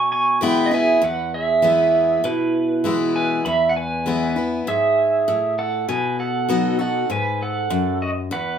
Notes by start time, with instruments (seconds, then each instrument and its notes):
Already playing: steel-string acoustic guitar B2, pedal steel guitar C#6
0.12 pedal steel guitar G#5 C#6
0.41 steel-string acoustic guitar E3 G#3 B3 E4, pedal steel guitar G5 B5
0.66 pedal steel guitar D#5
0.71 steel-string acoustic guitar B3 E4, pedal steel guitar E5 G#5
0.75 pedal steel guitar G#4
1.02 steel-string acoustic guitar E2, pedal steel guitar B4 F#5
1.34 pedal steel guitar G#4 E5
1.62 steel-string acoustic guitar E3 G#3 B3 E4
2.24 steel-string acoustic guitar B2, pedal steel guitar E4 B4
2.84 steel-string acoustic guitar E3 G#3 B3 E4
3.16 pedal steel guitar B4 G#5
3.45 steel-string acoustic guitar E2, pedal steel guitar E5 B5
3.69 pedal steel guitar F#5
3.76 pedal steel guitar B4 G#5
4.06 steel-string acoustic guitar E3 G#3 B3 E4
4.36 steel-string acoustic guitar B3 E4
4.67 steel-string acoustic guitar G#2, pedal steel guitar G#4 E5
5.28 steel-string acoustic guitar A2
5.59 pedal steel guitar A4 F#5
5.88 steel-string acoustic guitar B2, pedal steel guitar B4 G#5
6.20 pedal steel guitar A4 F#5
6.49 steel-string acoustic guitar F#3 B3 D#4 F#4
6.79 steel-string acoustic guitar D#4 F#4, pedal steel guitar A4 F#5
7.10 steel-string acoustic guitar G#2, pedal steel guitar B4 G#5
7.42 pedal steel guitar A4 F#5
7.70 steel-string acoustic guitar F#2
8.02 pedal steel guitar F#4 D#5
8.31 steel-string acoustic guitar E2, pedal steel guitar B4 F#5